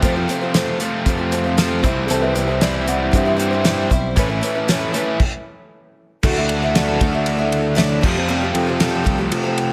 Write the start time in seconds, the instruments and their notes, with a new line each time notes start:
0.02 picked electric bass F2, overdriven electric guitar F2 C3, twelve-string acoustic guitar F3 A3 C4 F4 C5, kick, closed hi-hat
0.16 twelve-string acoustic guitar C4 F4 C5
0.28 twelve-string acoustic guitar A3 C4 F4 C5, closed hi-hat
0.41 twelve-string acoustic guitar C4 F4 C5
0.54 twelve-string acoustic guitar F3 A3 C4 F4 C5, snare, closed hi-hat
0.80 overdriven electric guitar F2 C3 F3, twelve-string acoustic guitar A3 C4 F4 C5, closed hi-hat
1.06 picked electric bass F2, twelve-string acoustic guitar A3 C4 F4 C5, kick, closed hi-hat
1.18 twelve-string acoustic guitar C4 F4 C5
1.31 twelve-string acoustic guitar A3 C4 F4 C5, closed hi-hat
1.44 twelve-string acoustic guitar C4 F4 C5
1.57 overdriven electric guitar F2 C3, twelve-string acoustic guitar F3 A3 C4 F4 C5, snare, closed hi-hat
1.82 picked electric bass C2, overdriven electric guitar C3 E3, twelve-string acoustic guitar G3 C4 E4 C5, kick, closed hi-hat
2.06 picked electric bass C2, twelve-string acoustic guitar C3 E3 G3, upright piano G#4
2.10 twelve-string acoustic guitar C4 E4 C5, upright piano A4, closed hi-hat
2.21 twelve-string acoustic guitar G3 C4 E4 C5, upright piano B4
2.35 picked electric bass C2, twelve-string acoustic guitar G3 C4 E4 C5, closed hi-hat
2.47 twelve-string acoustic guitar C4 E4 C5, upright piano C5
2.52 twelve-string acoustic guitar G3
2.61 twelve-string acoustic guitar C3 E3 G3 C4 E4 C5, upright piano D5, snare, closed hi-hat
2.75 upright piano E5
2.86 twelve-string acoustic guitar G3 C4 E4 C5, upright piano F#5, closed hi-hat
3.11 picked electric bass G2, twelve-string acoustic guitar G3 C4 E4 C5, upright piano G4 E5, kick, closed hi-hat
3.25 twelve-string acoustic guitar G3 C4 E4 C5
3.37 overdriven electric guitar E3, twelve-string acoustic guitar G3 C4 E4 C5, closed hi-hat
3.41 overdriven electric guitar C3
3.51 twelve-string acoustic guitar G3 C4 E4 C5
3.64 twelve-string acoustic guitar C3 E3 G3 C4 E4 C5, snare, closed hi-hat
3.90 picked electric bass B1, twelve-string acoustic guitar G3 C4 E4 C5, kick, closed hi-hat
4.16 picked electric bass A1, twelve-string acoustic guitar A2 E3 A3 C#4 E4 B4, kick, closed hi-hat
4.30 twelve-string acoustic guitar A3 C#4 E4 B4
4.41 twelve-string acoustic guitar A3 C#4 E4 B4, closed hi-hat
4.55 twelve-string acoustic guitar A3 C#4 E4 B4
4.68 twelve-string acoustic guitar A2 E3 A3 C#4 E4 B4, snare, closed hi-hat
4.93 overdriven electric guitar A2 E3, twelve-string acoustic guitar A3 C#4 E4 B4, closed hi-hat
5.20 kick, crash
6.23 picked electric bass D2, twelve-string acoustic guitar D3 F#3 A3 D4 E4 A4, overdriven electric guitar F#4, kick, crash
6.36 twelve-string acoustic guitar A3 D4 E4 A4
6.49 ride
6.62 twelve-string acoustic guitar A3 D4 E4 A4
6.75 twelve-string acoustic guitar D3 F#3 A3 D4 E4 A4, snare, ride
7.00 picked electric bass D2, twelve-string acoustic guitar A3 D4 E4 A4, kick, ride
7.12 twelve-string acoustic guitar A3 D4 E4 A4
7.26 ride
7.37 twelve-string acoustic guitar A3 D4 E4 A4
7.52 ride
7.75 twelve-string acoustic guitar D3 F#3 A3 D4 E4 A4, snare, ride
8.01 overdriven electric guitar F2 C3 F3 A3, picked electric bass F2, twelve-string acoustic guitar G3 C4 G4 A4, kick, crash
8.05 overdriven electric guitar F4
8.15 twelve-string acoustic guitar C4 G4 A4
8.28 twelve-string acoustic guitar F3 G3 C4 G4 A4
8.41 twelve-string acoustic guitar C4 G4 A4
8.55 picked electric bass F2, ride
8.67 twelve-string acoustic guitar C4 G4 A4
8.80 twelve-string acoustic guitar F3 G3 C4 G4 A4, snare, ride
9.04 picked electric bass C2, twelve-string acoustic guitar G3 C4 G4 A4, kick, ride
9.18 twelve-string acoustic guitar C4 G4 A4
9.31 picked electric bass F3, ride
9.43 twelve-string acoustic guitar C4 G4 A4
9.58 ride